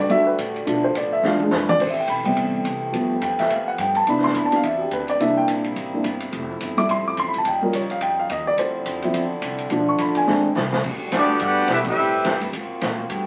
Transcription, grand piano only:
0.09 0.25 G3 soft
0.09 0.25 A3 soft
0.09 0.25 D4 soft
0.09 0.25 F#4 medium
0.09 0.27 E5 loud
0.26 0.34 B4 medium
0.66 0.87 A3 medium
0.66 0.87 D4 medium
0.66 0.87 F4 medium
0.84 0.95 C5 medium
0.97 1.12 D5 medium
1.13 1.24 E5 medium
1.24 1.78 G#3 medium
1.24 1.78 D4 soft
1.24 1.78 F4 medium
1.24 1.41 F5 medium
1.41 1.52 G#4 medium
1.54 1.69 B4 medium
1.69 1.80 D5 loud
1.81 1.90 C5 medium
1.90 1.99 E5 medium
2.00 2.09 G5 medium
2.10 2.25 B5 medium
2.24 2.63 C3 medium
2.24 2.63 G3 soft
2.24 2.64 B3 medium
2.24 2.90 G5 medium
2.92 3.13 F3 medium
2.92 3.14 A3 soft
2.92 3.14 B3 medium
3.23 3.39 G5 medium
3.40 3.50 E5 medium
3.52 3.67 F5 medium
3.68 3.79 F#5 medium
3.81 3.96 G5 medium
3.96 4.07 A5 medium
4.08 4.50 E3 medium
4.08 4.50 B3 medium
4.08 4.51 D4 medium
4.08 4.24 B5 medium
4.24 4.35 C6 medium
4.36 4.45 B5 medium
4.46 4.54 A5 medium
4.52 4.62 E3 soft
4.52 4.62 B3 soft
4.52 4.63 D4 soft
4.56 4.64 F5 medium
4.65 4.80 E5 medium
4.76 4.78 F#4 soft
4.81 4.92 G4 medium
4.93 5.09 B4 medium
5.09 5.20 D5 medium
5.20 5.63 E3 soft
5.20 5.63 A#3 soft
5.20 5.63 D4 medium
5.20 5.37 E5 medium
5.37 5.44 G5 medium
5.93 6.04 E3 soft
5.93 6.04 A#3 soft
5.93 6.04 D4 soft
6.77 6.95 G3 medium
6.77 6.95 A3 medium
6.77 6.95 E4 medium
6.77 6.89 D6 loud
6.91 7.06 C6 medium
7.08 7.18 D6 medium
7.20 7.28 C6 medium
7.29 7.37 B5 medium
7.38 7.47 A5 medium
7.48 7.63 G5 medium
7.62 7.80 G3 medium
7.62 7.80 C#4 soft
7.62 7.80 F4 medium
7.62 7.74 A#4 medium
7.75 7.91 C#5 medium
7.91 8.02 F5 medium
8.02 8.19 G5 medium
8.19 8.30 F5 medium
8.31 8.47 D#5 medium
8.47 8.58 D5 medium
8.59 9.40 C5 medium
9.03 9.21 F3 medium
9.03 9.21 C4 soft
9.03 9.21 E4 medium
9.71 10.25 F3 medium
9.71 10.25 A3 soft
9.71 10.25 D4 medium
9.89 10.00 C#6 medium
10.01 10.17 B5 medium
10.17 10.54 G#5 medium
10.27 10.48 G#3 medium
10.27 10.48 C4 medium
10.27 10.48 D4 medium

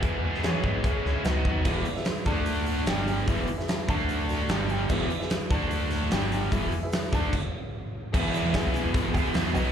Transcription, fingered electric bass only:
0.00 0.17 E2 loud
0.24 0.33 E2 medium
0.44 0.53 E3 loud
0.64 0.81 G#2 loud
0.84 0.93 C#2 loud
1.05 1.14 C#2 medium
1.25 1.43 C#2 medium
1.46 1.64 D#2 medium
1.66 1.84 E1 loud
1.86 muted fingered electric bass stroke soft
2.27 2.83 D2 medium
2.88 3.26 G1 medium
3.28 3.47 E1 medium
3.50 muted fingered electric bass stroke soft
3.89 4.46 D2 medium
4.49 4.87 G1 medium
4.90 5.09 E1 loud
5.10 muted fingered electric bass stroke soft
5.51 6.08 D2 loud
6.13 6.50 G1 loud
6.53 6.72 E1 medium
6.73 muted fingered electric bass stroke soft
7.13 7.32 D2 medium
8.14 8.40 E2 loud
8.45 8.54 E3 medium
8.66 8.74 B1 medium
8.85 9.11 E2 loud
9.15 9.24 C#2 loud
9.35 9.44 E2 medium
9.55 9.72 B1 medium

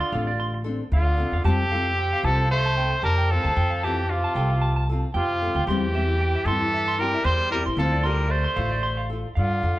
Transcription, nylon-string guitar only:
0.13 0.31 C4 soft
0.13 0.31 D4 soft
0.13 0.30 A4 soft
0.64 0.83 C4 soft
0.64 0.83 D4 medium
0.64 0.82 A4 medium
1.17 1.36 C4 soft
1.17 1.36 D4 soft
1.17 1.35 A4 medium
1.45 1.62 G3 medium
1.45 1.62 C4 medium
1.45 1.63 F4 medium
1.45 1.63 A4 medium
1.72 1.90 C4 soft
1.72 1.90 F4 soft
1.72 1.89 A4 soft
2.25 2.43 C4 soft
2.25 2.43 F4 soft
2.25 2.41 A4 soft
2.78 2.96 C4 soft
2.78 2.94 A4 soft
2.78 muted nylon-string guitar stroke soft
3.32 3.49 C4 soft
3.32 3.48 F4 soft
3.84 4.02 C4 soft
3.84 4.01 F4 soft
3.84 4.00 A4 soft
4.37 4.54 F4 soft
4.37 4.53 A4 soft
4.89 5.08 C4 medium
4.89 5.07 F4 medium
4.89 5.06 A4 medium
5.42 5.60 C4 soft
5.42 5.59 A4 soft
5.42 muted nylon-string guitar stroke soft
5.69 5.85 G3 medium
5.69 5.86 C4 medium
5.69 5.86 E4 medium
5.94 6.12 C4 soft
5.94 6.11 E4 medium
6.46 6.65 C4 soft
6.46 6.63 E4 medium
6.98 7.17 C4 soft
6.98 7.16 E4 medium
7.50 7.70 C4 soft
7.50 7.68 E4 medium
7.78 7.95 C4 medium
7.78 7.96 F4 medium
7.78 7.96 A4 medium
8.03 8.23 F4 soft
8.03 8.21 A4 medium
8.56 8.75 F4 soft
8.56 8.74 A4 soft
9.10 9.29 F4 soft
9.10 9.27 A4 medium
9.64 9.79 A4 soft

